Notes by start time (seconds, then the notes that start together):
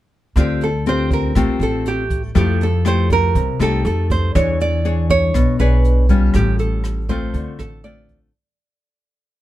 0.36 D2 D3 C4 F4 G4, kick, cross-stick, closed hi-hat
0.61 A4, closed hi-hat
0.86 C4 F4 G4 C5, closed hi-hat
1.11 A#4, kick, closed hi-hat
1.35 A1 A3 C4 F4 G4, kick, cross-stick, closed hi-hat
1.59 A1 A4, closed hi-hat
1.86 G4, closed hi-hat
2.10 kick, closed hi-hat
2.35 F2 F3 A3 E4 G4, kick, cross-stick, closed hi-hat
2.61 A4, closed hi-hat
2.85 A3 E4 G4 C5, cross-stick, closed hi-hat
3.10 A#4, kick, closed hi-hat
3.35 C2 C3, kick, closed hi-hat
3.59 C2 A3 D#4 G4 A4, cross-stick, closed hi-hat
3.85 F2 A4, closed hi-hat
4.10 C5, kick, closed hi-hat
4.35 E2 E3 D4 G#4 C#5, kick, cross-stick, closed hi-hat
4.60 D5, closed hi-hat
4.85 D4 G#4 C#5, closed hi-hat
5.10 C#5, kick, closed hi-hat
5.34 B1 B2, kick, cross-stick, closed hi-hat
5.59 B1 D4 G#4 B4 C#5, closed hi-hat
5.84 closed hi-hat
6.09 G3 C#4 F4, kick, closed hi-hat
6.34 A1 A2 G4, kick, cross-stick, closed hi-hat
6.59 A4, closed hi-hat
6.84 cross-stick, closed hi-hat
7.09 A3 C4 F4 C5, kick, closed hi-hat
7.34 D2 D3, kick, closed hi-hat
7.59 A1 A4, cross-stick, closed hi-hat
7.84 A3 C4 F4 D5, closed hi-hat
8.09 kick, closed hi-hat